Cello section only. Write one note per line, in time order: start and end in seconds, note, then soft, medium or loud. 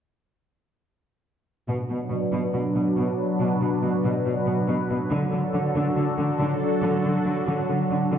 1.68 1.76 B2 soft
1.89 1.97 B2 soft
2.10 2.18 B2 soft
2.32 2.40 B2 soft
2.53 2.61 B2 soft
2.75 2.83 B2 soft
2.96 3.04 B2 soft
3.39 3.47 B2 soft
3.60 3.68 B2 soft
3.82 3.90 B2 soft
4.04 4.12 B2 soft
4.25 4.33 B2 soft
4.46 4.54 B2 soft
4.67 4.75 B2 soft
4.89 4.97 B2 soft
5.10 5.18 D3 medium
5.32 5.40 D3 soft
5.53 5.61 D3 soft
5.75 5.83 D3 medium
5.96 6.04 D3 soft
6.18 6.26 D3 soft
6.39 6.47 D3 soft
6.83 6.91 D3 medium
7.04 7.12 D3 soft
7.26 7.34 D3 soft
7.47 7.55 D3 medium
7.69 7.77 D3 soft
7.90 7.98 D3 soft
8.11 8.18 D3 soft